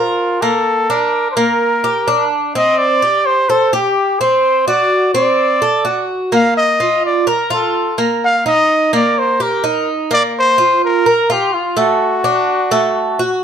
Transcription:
Already playing: F4 A#4
0.42 A#3 A4
0.89 D4 A#4
1.31 C5
1.36 A#3 A#4
1.84 G4
2.08 D4
2.55 C4 D#5
2.78 D5
3.02 G4
3.26 C5
3.50 A4 C5
3.73 G4
4.20 C4 C5
4.67 F#4 D5
5.14 C4 D5
5.62 A4
5.85 F#4
6.32 A#3 F5
6.57 D#5
6.80 F4
7.06 D5
7.27 A#4
7.50 F4 A4
7.98 A#3
8.24 F5
8.46 D#4 D#5
8.93 A#3 D5
9.18 C5
9.40 G4 A#4
9.64 D#4
10.11 A#3 D5
10.38 C5
10.58 F4
10.85 A#4
11.06 A#4
11.30 F4 G4
11.54 F4
11.77 A3 F#4
12.24 D4
12.71 A3
13.19 F#4

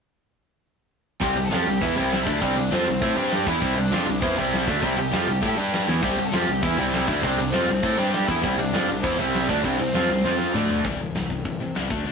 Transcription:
1.20 C2 C3 G3 C4 G4 G5, kick, crash
1.37 C2 C3 G3, crash
1.45 A4 A5
1.50 F2 F3 C4 F4 G4 G5, snare, crash
1.66 C2 C3 G3, crash
1.81 E2 E3 B3 E4 E5, kick, crash
1.95 C2 C3 G3 C4, crash
2.12 E4 E5, snare, crash
2.25 D2 D3 A3 D4, kick, crash
2.40 C2 C3 G3 C4 D4 D5, kick, crash
2.56 C2 C3 G3, crash
2.71 F2 F3 C4 F4 C5, snare, crash
2.86 C2 C3 G3, crash
3.02 A2 A3 E4 A4, kick, crash
3.16 G2 G3 D4 G4, crash
3.31 G4 G5, snare, crash
3.46 E2 E3 B3 E4 E5, kick, crash
3.61 C2 C3 G3 C4, kick, crash
3.76 C2 C3 G3 D4 D5, crash
3.91 F2 F3 C4 F4, snare, crash
4.06 C2 C3 G3, crash
4.20 E2 E3 B3 C4 E4 C5, kick, crash
4.36 C2 C3 G3 C4 E4 E5, crash
4.53 snare, crash
4.67 D2 D3 A3 D4 E4 E5, kick, crash
4.81 C2 C3 G3 C4, kick, crash
4.97 C2 C3 G3 G4 G5, crash
5.11 F2 F3 C4 F4, snare, crash
5.27 C2 C3 G3, crash
5.41 A2 A3 E4 A4, kick, crash
5.56 G2 G3 D4 G4, crash
5.73 snare, crash
5.87 E2 E3 B3 E4, snare
6.02 C2 C3 G3 C4 G4 G5, kick, crash
6.17 C2 C3 G3, crash
6.25 A4 A5
6.32 F2 F3 C4 F4 G4 G5, snare, crash
6.47 C2 C3 G3, crash
6.62 E2 E3 B3 E4 E5, kick, crash
6.77 C2 C3 G3 C4, crash
6.93 E4 E5, snare, crash
7.07 D2 D3 A3 D4, kick, crash
7.22 C2 C3 G3 C4 D4 D5, kick, crash
7.38 C2 C3 G3, crash
7.50 F2 F3 C4 F4 C5, snare, crash
7.67 C2 C3 G3, crash
7.82 A2 A3 E4 A4, kick, crash
7.97 G2 G3 D4 G4, crash
8.10 G4 G5, snare, crash
8.25 E2 E3 B3 E4 E5, kick, crash
8.42 C2 C3 G3 C4, kick, crash
8.57 C2 C3 G3 D4 D5, crash
8.72 F2 F3 C4 F4, snare, crash
8.88 C2 C3 G3, crash
9.02 E2 E3 B3 C4 E4 C5, kick, crash
9.19 C2 C3 G3 C4 E4 E5, crash
9.34 snare, crash
9.48 D2 D3 A3 D4 D5, kick, crash
9.64 C2 C3 G3 C4, kick, crash
9.79 C2 C3 G3 C4 C5, crash
9.94 F2 F3 C4 F4, snare, crash
10.08 C2 C3 G3, crash
10.24 F2 F3 C4 F4, snare
10.39 high tom
10.54 D2 D3 A3 D4, mid tom
10.69 floor tom
10.84 C2 C3 E3 G3, kick, open hi-hat
10.99 G1 C3 E3
11.15 C2 C3 E3, snare, open hi-hat
11.30 C3 E3, kick
11.45 G1 C3 E3, kick, open hi-hat
11.60 C3 E3
11.75 C2 C3 E3 G3, snare, open hi-hat
11.89 D2 D3 A3 D4, kick
12.05 D2 D3 A3 D4, open hi-hat

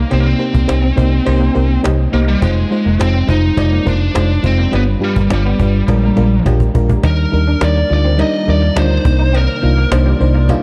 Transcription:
Already playing: A#3 D#4 G4 C5 D5 D#5
0.10 C2 C3 A#3 C4 D#4 G4 C5, cajon slap, cowbell
0.20 A#3
0.26 C4, cajon slap
0.38 A#3 D#4 G4 C5, muted clean electric guitar stroke, cajon slap
0.54 C2 A#3, cajon bass
0.67 C2 A#3 D#4 G4 C5, muted clean electric guitar stroke, cajon slap, cowbell
0.82 C4, cajon slap
0.96 C2 G3 A#3 D#4 G4 C5, cajon bass
1.12 cajon slap
1.25 C2 A#3 D#4 G4 C5, muted clean electric guitar stroke, cowbell
1.40 A#3, cajon slap
1.54 C2 A#3 D#4 G4 C5, cajon slap
1.71 cajon slap
1.83 C2 G3 A#3 D#4 G4 D#5, cajon slap, cowbell
2.00 cajon slap
2.12 C2 A#3 D#4 G4 C5, muted clean electric guitar stroke
2.27 G3 A#3, cajon slap
2.42 F1 G#3 C4 D#4 F4 C5, cajon bass, cowbell
2.71 G#3 D#4 F4 C5, muted clean electric guitar stroke, cajon slap
2.85 F1 A#3, cajon slap
2.99 F1 G#3 C4 D#4 F4 C5, muted clean electric guitar stroke, cajon slap, cowbell
3.14 C4, cajon slap
3.27 F1 G#3 D#4 F4 C5, cajon bass
3.43 cajon slap
3.56 F1 G#3 D#4 F4 D5, muted clean electric guitar stroke, cajon bass, cowbell
3.72 A#3
3.85 F1 G#3 A#3 D4 D#4 F4 C5, cajon bass
4.01 cajon slap
4.14 F1 G#3 D#4 F4 C5, cajon slap, cowbell
4.30 cajon slap
4.42 F1 G#3 C4 D#4 F4 C5, muted clean electric guitar stroke, cajon bass
4.58 A#3, cajon slap
4.71 G1 G2 G3 B3 D4 F4 B4, cajon slap, cowbell
4.87 cajon slap
5.00 G3 D4 F4 G4, muted clean electric guitar stroke, cajon slap
5.04 G3
5.16 G1 A#3, cajon bass
5.30 G1 G3 D4 F4 D5, muted clean electric guitar stroke, cajon slap, cowbell
5.45 B3, cajon slap
5.59 G1 G3 D4 F4 B4, cajon bass
5.74 cajon slap
5.88 A#1 A#2 G#3 D4 F4 A#4, muted clean electric guitar stroke, cajon bass, cajon slap, cowbell
6.03 A#3, cajon slap
6.16 A#1 G#3 A#3 D4 F4 A#4, cajon slap
6.31 cajon slap
6.44 A#1 G#3 D4 F4 G4, cajon bass, cajon slap, cowbell
6.60 cajon bass
6.74 A#1 G#3 D4 F4 A#4, muted clean electric guitar stroke, cajon bass
6.89 A#3, cajon bass
7.03 D#2 D#3 G3 A#3 D4 D#4 A#4, cajon bass, cowbell
7.18 cajon slap
7.32 D#2 G3 D4 D#4 A#4, muted clean electric guitar stroke, cajon slap
7.47 D4
7.61 D#2 G3 D4 D#4 A#4 D5, cajon slap, cowbell
7.76 A#3
7.90 D2 G3 D4 D#4 F4 D5, muted clean electric guitar stroke, cajon slap
8.05 C4
8.18 G3 A#3 D4 D#4 A#4 D#5, cajon slap, cowbell
8.47 D#2 G3 D4 D#4 A#4 D5, muted clean electric guitar stroke, cajon slap
8.62 A#3, cajon slap
8.75 D2 G3 D4 D#4 F4 C5, cajon slap, cowbell
8.90 muted clean electric guitar stroke
9.05 C2 C3 D#3 A#3 D4 D#4 C5 D5, cajon bass
9.19 D#4
9.33 C4 A#4, cajon slap, cowbell
9.49 cajon slap
9.62 C2 A#3 D4 D#4 F4, muted clean electric guitar stroke, cajon slap
9.77 A#3
9.91 C2 A#3 D4 D#4 C5, cajon slap, cowbell
10.06 G3
10.20 C2 A#3 D4 D#4 C5, muted clean electric guitar stroke, cajon slap
10.35 A#3
10.49 G3 A#3 D4 D#4 F4, cajon bass, cowbell

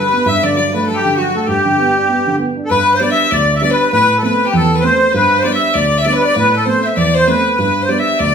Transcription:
Already playing: G2 G3 B4
0.13 B3
0.26 G2 E5
0.43 D3 D5
0.56 F#3 D5
0.73 A3 B4
0.86 F#3 A4
0.94 G4
1.05 D3
1.16 F#3 F#4
1.35 A3 A4
1.47 G2 G4
1.65 D3
1.79 B3
1.96 D4
2.09 B3
2.27 D3
2.39 B3
2.57 D4
2.65 A4
2.70 G2 B4
2.94 C5
3.00 G3 B3 D4 D5
3.10 E5
3.31 D2 D5
3.56 E5
3.61 G3 B3 D4 D5
3.71 B4
3.92 A2 B4
4.18 A4
4.22 A3 B3 C4 B4
4.45 G4 A4
4.52 E2 A4
4.56 A4
4.75 B4
4.82 A3 B3 C4 C5
5.12 G2 B4
5.37 C5
5.44 G3 B3 D4 D5
5.52 E5
5.74 D2 D5
5.98 E5
6.05 G3 B3 D4 D5
6.13 B4
6.22 D5
6.34 A2 B4
6.53 A4
6.65 A3 B3 C4 C5
6.83 E5
6.93 E2 D5 E5
7.00 D5
7.14 C5
7.27 A3 B3 C4 B4
7.58 G2 B4
7.82 C5
7.89 G3 B3 D4 D5
7.98 E5
8.19 D2 D5

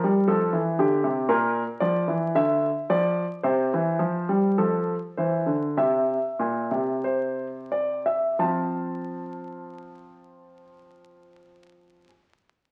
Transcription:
Already playing: A#4
0.04 G3
0.28 F3 A4
0.53 E3
0.79 D3 G4
1.04 C3
1.29 A#2 A#4
1.80 F3 D5
2.08 E3
2.35 D3 E5
2.90 F3 D5
3.43 C3 C5
3.74 E3
3.99 F3
4.29 G3
4.58 F3 A4
5.17 E3 C5
5.46 D3
5.77 C3 E5
6.39 A#2
6.71 C3
7.04 C5
7.72 D5
8.06 E5
8.39 F3 C4 F4 A5

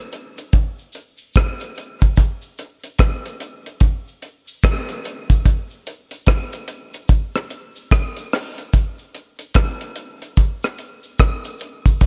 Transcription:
0.12 closed hi-hat, cabasa
0.38 closed hi-hat, cabasa
0.53 kick, closed hi-hat, cabasa
0.79 cabasa
0.92 closed hi-hat, cabasa
1.18 cabasa
1.34 kick, cross-stick, closed hi-hat, cabasa
1.60 closed hi-hat, cabasa
1.75 closed hi-hat, cabasa
2.01 kick, closed hi-hat, cabasa
2.16 kick, closed hi-hat, cabasa
2.42 cabasa
2.58 closed hi-hat, cabasa
2.84 closed hi-hat, cabasa
2.98 kick, cross-stick, closed hi-hat, cabasa
3.26 closed hi-hat, cabasa
3.40 closed hi-hat, cabasa
3.66 closed hi-hat, cabasa
3.80 kick, closed hi-hat, cabasa
4.08 cabasa
4.22 closed hi-hat, cabasa
4.48 cabasa
4.62 kick, cross-stick, closed hi-hat, cabasa
4.89 closed hi-hat, cabasa
5.04 closed hi-hat, cabasa
5.30 kick, closed hi-hat, cabasa
5.45 kick, closed hi-hat, cabasa
5.71 cabasa
5.86 closed hi-hat, cabasa
6.11 closed hi-hat, cabasa
6.26 kick, cross-stick, closed hi-hat, cabasa
6.52 closed hi-hat, cabasa
6.68 closed hi-hat, cabasa
6.93 closed hi-hat, cabasa
7.08 kick, closed hi-hat, cabasa
7.35 cross-stick, cabasa
7.50 closed hi-hat, cabasa
7.76 cabasa
7.91 kick, cross-stick, closed hi-hat, cabasa
8.16 closed hi-hat, cabasa
8.32 cross-stick, open hi-hat, cabasa
8.58 closed hi-hat, cabasa
8.73 kick, closed hi-hat, cabasa
8.99 cabasa
9.14 closed hi-hat, cabasa
9.39 closed hi-hat, cabasa
9.54 kick, cross-stick, closed hi-hat, cabasa
9.80 closed hi-hat, cabasa
9.96 closed hi-hat, cabasa
10.22 closed hi-hat, cabasa
10.37 kick, closed hi-hat, cabasa
10.63 cross-stick, cabasa
10.78 closed hi-hat, cabasa
11.03 cabasa
11.18 kick, cross-stick, closed hi-hat, cabasa
11.45 closed hi-hat, cabasa
11.59 closed hi-hat, cabasa
11.86 kick, closed hi-hat, cabasa
12.01 kick, closed hi-hat, cabasa

